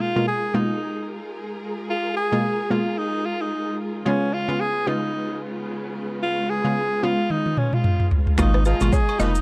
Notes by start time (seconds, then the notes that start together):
Already playing: B2 G#3 A#3 F4 G#4 A#4
0.01 F4
0.16 B2 G#3 A#3 F4
0.28 G#4
0.54 B2 G#3 A#3 D#4 F4
1.90 F4
2.17 G#4
2.32 B2 G#3 A#3 F4
2.70 B2 G#3 A#3 F4
2.98 D#4
3.25 F4
3.41 D#4
4.05 C#3 G#3 B3 C#4 F4
4.34 F4
4.48 C#3 G#3 B3 F4
4.60 G#4
4.87 C#3 G#3 B3 D#4 F4
6.23 F4
6.50 G#4
6.64 C#3 G#3 B3 F4
7.03 C#3 G#3 B3 F4
7.30 D#4, high tom
7.46 high tom
7.57 C#4, mid tom
7.73 F4, mid tom
7.84 mid tom
8.00 mid tom
8.11 floor tom
8.27 floor tom
8.38 G#1 B2 G#3 A#3 D#4 F4 D#5 A#5, finger snap, kick, cross-stick, high agogo, shaker
8.54 B4
8.65 F3 D#4 F4 G#4 B4, shaker
8.81 G#1 B2 G#3 A#3 F4, high agogo, shaker
8.93 G#4 C#5, kick, shaker
9.09 high agogo
9.19 F1 B2 F3 G#3 A#3 D#4 F4 B4 D#5, shaker
9.35 shaker